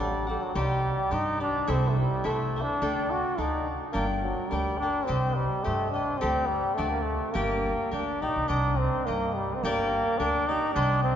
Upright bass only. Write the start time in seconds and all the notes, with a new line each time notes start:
Already playing: A1
0.55 C2
1.12 G2
1.68 C2
2.25 C2
2.82 D2
3.38 D2
3.95 G1
4.52 D2
5.09 C2
5.67 G2
6.23 D2
6.79 D2
7.35 G1
7.92 D2
8.22 A#1
8.36 C2
8.50 C2
9.08 G2
9.63 G1
10.20 D2
10.76 C2